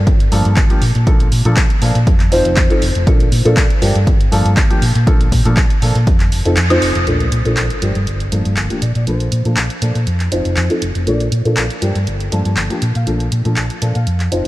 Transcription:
0.07 G1, kick, closed hi-hat, shaker
0.20 closed hi-hat, shaker
0.32 G2 F3 A#3 D4 A4, open hi-hat
0.45 G2, closed hi-hat, shaker
0.56 G1, kick, clap, closed hi-hat
0.70 F3 A#3 D4 G4, closed hi-hat, shaker
0.82 A#2, open hi-hat
0.95 A#2, closed hi-hat, shaker
1.07 A#1 F3 A#3 D4 A4, kick, closed hi-hat, shaker
1.20 closed hi-hat, shaker
1.32 A#2, open hi-hat
1.45 A#2 F3 A#3 D4 A4, closed hi-hat, shaker
1.57 A#1, kick, clap, closed hi-hat
1.70 closed hi-hat, shaker
1.82 A#2 F3 A#3 D4 A4, open hi-hat
1.95 A#2, closed hi-hat, shaker
2.07 kick, closed hi-hat, shaker
2.20 clap, closed hi-hat, shaker
2.32 F1 F3 C4 D#4 C5, open hi-hat
2.45 F1, closed hi-hat, shaker
2.57 kick, clap, closed hi-hat
2.70 F3 C4 D#4 A4, closed hi-hat, shaker
2.82 F1, open hi-hat
2.95 F1, closed hi-hat, shaker
3.06 F3 A#3 D4 A4, kick, closed hi-hat, shaker
3.20 closed hi-hat, shaker
3.32 A#2, open hi-hat
3.45 A#2 F3 A#3 D4 A4, closed hi-hat, shaker
3.57 A#1, kick, clap, closed hi-hat
3.70 closed hi-hat, shaker
3.81 G2 F3 A#3 D4 G4, open hi-hat
3.95 G2, closed hi-hat, shaker
4.07 G1, kick, closed hi-hat, shaker
4.21 closed hi-hat, shaker
4.32 G2 F3 A#3 D4 A4, open hi-hat
4.45 G2, closed hi-hat, shaker
4.57 G1, kick, clap, closed hi-hat
4.70 F3 A#3 D4 G4, closed hi-hat, shaker
4.82 A#2, open hi-hat
4.95 A#2, closed hi-hat, shaker
5.07 A#1 F3 A#3 D4 A4, kick, closed hi-hat, shaker
5.21 closed hi-hat, shaker
5.32 A#2, kick, open hi-hat
5.45 A#2 F3 A#3 D4 A4, closed hi-hat, shaker
5.57 A#1, kick, clap, closed hi-hat
5.70 closed hi-hat, shaker
5.82 A#2 F3 A#3 D4 A4, open hi-hat
5.95 A#2, closed hi-hat, shaker
6.07 kick, closed hi-hat, shaker
6.20 clap, closed hi-hat, shaker
6.32 F1, open hi-hat
6.45 F1 F3 C4 D#4 A4, closed hi-hat, shaker
6.57 F2, clap, closed hi-hat, shaker
6.70 F3 C4 D#4 C5, closed hi-hat, high woodblock, shaker
6.82 F1, open hi-hat
6.95 F1, closed hi-hat, shaker
7.07 A#1 F3 A#3 D4 A4 D5, closed hi-hat, sub drop
7.20 closed hi-hat
7.32 A#2, closed hi-hat
7.45 A#2 F3 A#3 D4 A4, closed hi-hat
7.57 A#1, clap, closed hi-hat
7.70 closed hi-hat
7.82 G2 F3 A#3 D4 G4, closed hi-hat
7.95 G2, closed hi-hat
8.07 G1, closed hi-hat
8.20 closed hi-hat
8.32 G2 F3 A#3 D4 A4, closed hi-hat
8.45 G2, closed hi-hat
8.57 G1, clap, closed hi-hat
8.70 F3 A#3 D4 G4, closed hi-hat
8.82 A#2 D5, closed hi-hat
8.95 A#2 D5, closed hi-hat
9.07 A#1 F3 A#3 D4 A4 C5, closed hi-hat
9.20 closed hi-hat
9.32 A#2, closed hi-hat
9.45 A#2 F3 A#3 D4 A4, closed hi-hat
9.57 A#1, clap, closed hi-hat
9.70 closed hi-hat
9.82 A#2 F3 A#3 D4 A4, closed hi-hat
9.95 A#2, closed hi-hat
10.07 F2, closed hi-hat
10.20 clap, closed hi-hat
10.32 F1 F3 C4 D#4 C5, closed hi-hat
10.45 F1, closed hi-hat
10.57 F2, clap, closed hi-hat
10.70 F3 C4 D#4 A4, closed hi-hat
10.82 F1, closed hi-hat
10.95 F1, closed hi-hat
11.07 A#1 F3 A#3 D4 A4 D5, closed hi-hat
11.20 closed hi-hat
11.32 A#2, closed hi-hat
11.45 A#2 F3 A#3 D4 A4, closed hi-hat
11.57 A#1, clap, closed hi-hat
11.70 closed hi-hat
11.82 G2 F3 A#3 D4 G4, closed hi-hat
11.95 G2, closed hi-hat
12.07 G1, closed hi-hat
12.20 closed hi-hat
12.32 G2 F3 A#3 D4 A4, closed hi-hat
12.45 G2, closed hi-hat
12.57 G1, clap, closed hi-hat
12.70 F3 A#3 D4 G4, closed hi-hat
12.82 A#2, closed hi-hat
12.95 A#2 F5, closed hi-hat
13.07 A#1 F3 A#3 D4 A4, closed hi-hat
13.20 closed hi-hat
13.32 A#2, closed hi-hat
13.45 A#2 F3 A#3 D4 A4, closed hi-hat
13.56 A#1, clap, closed hi-hat
13.70 closed hi-hat
13.82 A#2 F3 A#3 D4 A4, closed hi-hat
13.95 A#2 F5, closed hi-hat
14.07 F2, closed hi-hat
14.20 clap, closed hi-hat
14.32 F1 F3 C4 D#4 C5, closed hi-hat

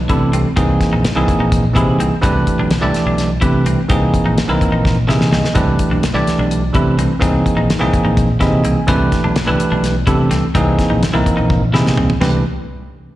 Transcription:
0.09 C3 E3 A3 D4 E4 G4 A4, kick, closed hi-hat
0.33 C2 C4, closed hi-hat
0.56 C2 E3 A#3 C4 D#4 G#4, kick, closed hi-hat
0.81 kick, snare, closed hi-hat
0.93 A#1 D#4
1.05 snare, closed hi-hat
1.15 C2 E3 A#3 C4 D#4 E4 G#4
1.28 kick, closed hi-hat
1.40 A#1 D#4
1.52 kick, closed hi-hat
1.74 C3 E3 A#3 C4 D#4 E4 G#4, kick, closed hi-hat
1.99 C2 C4, closed hi-hat
2.21 C2 E3 A3 C4 D4 G4 B4, kick, closed hi-hat
2.47 kick, closed hi-hat
2.59 B1 D4
2.71 snare, closed hi-hat
2.81 C2 E3 A3 D4 E4 G4 D5
2.94 snare, closed hi-hat
3.06 B1 D4
3.18 snare, closed hi-hat
3.41 C3 E3 A3 D4 E4 G4 B4, kick, closed hi-hat
3.65 C2 C4, closed hi-hat
3.89 C2 E3 A#3 C4 D#4 G#4, kick, closed hi-hat
4.14 kick, closed hi-hat
4.25 A#1 D#4
4.38 snare, closed hi-hat
4.48 C2 E3 A#3 C4 D#4 E4 A#4
4.61 kick, closed hi-hat
4.72 A#1 D#4
4.85 kick, snare
5.07 C3 E3 A#3 C4 D#4 E4 G#4 G#5, snare
5.21 snare
5.31 C2 C4 D#5, snare
5.44 snare
5.54 C2 E3 A3 C4 D4 G4 B4, kick, closed hi-hat
5.79 kick, closed hi-hat
5.91 B1 D4
6.03 snare, closed hi-hat
6.13 C2 E3 A3 D4 E4 G4 D5
6.26 muted fingered electric bass stroke, snare, closed hi-hat
6.39 B1 D4
6.51 closed hi-hat
6.72 C3 E3 A3 D4 E4 G4 B4, kick, closed hi-hat
6.98 C2 C4, closed hi-hat
7.20 C2 E3 A#3 C4 D#4 G#4, kick, closed hi-hat
7.46 kick, closed hi-hat
7.57 A#1 D#4
7.70 snare, closed hi-hat
7.79 C2 E3 A#3 C4 D#4 E4 G#4
7.93 kick, closed hi-hat
8.05 A#1 D#4
8.17 kick, closed hi-hat
8.40 C3 E3 A#3 C4 D#4 E4 G#4 D#5, kick, snare, closed hi-hat
8.64 C2 C4 G#5, closed hi-hat
8.87 C2 E3 A3 C4 D4 G4 B4, kick, closed hi-hat
9.12 kick, snare, closed hi-hat
9.24 B1 D4
9.36 snare, closed hi-hat
9.46 C2 E3 A3 D4 E4 G4 B4
9.60 muted fingered electric bass stroke, closed hi-hat
9.72 B1 D4
9.84 snare, closed hi-hat
10.06 C3 E3 A3 D4 E4 G4 A4, kick, closed hi-hat
10.31 C2 C4, snare, closed hi-hat
10.55 C2 E3 A#3 C4 D#4 G#4, kick, closed hi-hat
10.79 kick, snare, closed hi-hat
10.90 A#1 D#4
11.03 snare, closed hi-hat
11.13 C2 E3 A#3 C4 D#4 E4 A#4
11.26 muted fingered electric bass stroke, kick, closed hi-hat
11.37 A#1 D#4
11.50 kick, high tom
11.72 C3 E3 A#3 C4 D#4 E4 G#4, snare
11.87 snare
11.97 C2 C4, floor tom
12.10 floor tom
12.21 C2 E3 A3 C4 D4 G4 B4, snare, floor tom, crash

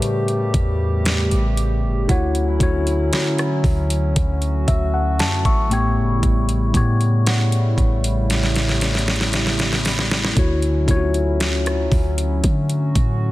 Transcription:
Already playing: A2 C#3 G3 A3 B3 G4 A#4 B4 F#5 G5 A5 C#6
0.02 closed hi-hat
0.28 closed hi-hat
0.54 E2, kick, closed hi-hat
1.05 snare, closed hi-hat
1.31 A1, closed hi-hat
1.57 closed hi-hat
1.84 G1
2.07 D2 D3 F#3 A3 C#4 E4 F#4 F#5, kick, closed hi-hat
2.11 C#5
2.35 closed hi-hat
2.59 D2 D3 A3 E4 F#4, kick, closed hi-hat
2.63 C#5
2.87 closed hi-hat
3.13 snare, closed hi-hat
3.38 cross-stick, closed hi-hat
3.64 D2, kick, open hi-hat
3.90 closed hi-hat
4.16 D2 F#4, kick, closed hi-hat
4.42 closed hi-hat
4.68 D2 E5, kick, closed hi-hat
4.94 A4 F#5
5.19 F#2 C#5 A5, snare, closed hi-hat
5.45 A1 E5 C#6, kick, closed hi-hat
5.69 A2 C#3 G3 A3 B3 E4 G4 G5, closed hi-hat
5.73 C#5
5.98 G1
6.23 A1, kick, closed hi-hat
6.49 closed hi-hat
6.73 A2 A3 B3 G4, kick, closed hi-hat
6.77 C#5
7.01 closed hi-hat
7.27 F#5, snare, closed hi-hat
7.52 closed hi-hat
7.78 A1, kick, closed hi-hat
8.04 closed hi-hat
8.30 snare, closed hi-hat
8.43 snare
8.55 snare, closed hi-hat
8.69 snare
8.81 snare, closed hi-hat
8.95 snare, closed hi-hat
9.08 snare
9.16 closed hi-hat
9.21 snare
9.33 snare, closed hi-hat
9.47 snare
9.59 snare, closed hi-hat
9.73 snare
9.85 snare, open hi-hat
9.99 snare
10.11 snare
10.25 snare
10.35 D2 D3 F#3 A3 C#4 E4 F#4, kick, closed hi-hat
10.39 C#5
10.62 closed hi-hat
10.87 D2 D3 A3 E4 F4, kick, closed hi-hat
10.91 C#5
10.96 F#4
11.14 closed hi-hat
11.40 snare, closed hi-hat
11.66 cross-stick, closed hi-hat
11.92 D2, kick, open hi-hat
12.18 closed hi-hat
12.44 D3 F#4, kick, closed hi-hat
12.69 closed hi-hat
12.95 A2, kick, closed hi-hat

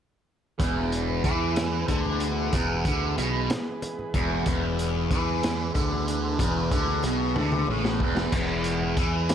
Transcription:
0.58 E1 E2 E3 G#3 B3 G#4 B4, kick, closed hi-hat, high conga, low conga
0.92 closed hi-hat
1.08 low conga
1.24 E2 E3, kick, closed hi-hat, high conga
1.41 low conga
1.56 snare, closed hi-hat, low conga
1.88 D2 D3, kick, closed hi-hat, high conga, low conga
2.05 low conga
2.20 closed hi-hat
2.53 E1 E2, kick, closed hi-hat, high conga, low conga
2.85 D2 D3, kick, closed hi-hat
3.17 B1 B2, closed hi-hat, high conga
3.34 low conga
3.50 snare, closed hi-hat, low conga
3.82 closed hi-hat, high conga, low conga
3.99 low conga
4.14 E1 E2, kick, closed hi-hat
4.46 E1 E2, kick, closed hi-hat, high conga, low conga
4.79 closed hi-hat
4.95 low conga
5.11 E2 E3, kick, closed hi-hat, high conga
5.27 low conga
5.43 snare, closed hi-hat, low conga
5.74 D2 D3, kick, closed hi-hat, high conga, low conga
5.91 low conga
6.08 closed hi-hat
6.39 E1 E2, kick, closed hi-hat, high conga, low conga
6.55 low conga
6.72 D2 D3, kick, closed hi-hat
6.87 low conga
7.03 B1 B2, closed hi-hat, high conga
7.35 D2 D3, high tom, low conga
7.52 high tom
7.67 A1 A2, high conga
7.84 snare, high conga
8.00 E1 E2, kick, low conga
8.16 snare, low conga
8.32 E1 E2, kick, closed hi-hat, crash, high conga, low conga
8.64 closed hi-hat
8.81 low conga
8.97 E2 E3, kick, closed hi-hat, high conga
9.13 low conga
9.29 snare, closed hi-hat, low conga

